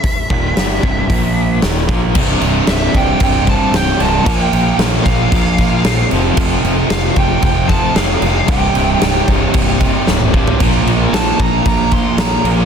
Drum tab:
CC |----------------|x-x-x-x-x-x-x-x-|x-x-x-x-x-x-x-x-|x-x-x-x-x-x-x-x-|
HH |o---o---o---o---|----------------|----------------|----------------|
SD |----o-------o-o-|----o-------o---|----o-------o---|----o-------o---|
T2 |----------------|----------------|----------------|----------------|
FT |----------------|----------------|----------------|----------------|
BD |o-o---o-o-----o-|o-----o-o-o-----|o-----o-o-o-----|o-----o-o-o-----|

CC |x-x-x-x-x-x-----|x-x-x-x-x-x-x-x-|
HH |----------------|----------------|
SD |----o-------o---|----o-------o---|
T2 |-------------o--|----------------|
FT |---------------o|----------------|
BD |o-----o-o-o---o-|o-----o-o-o-----|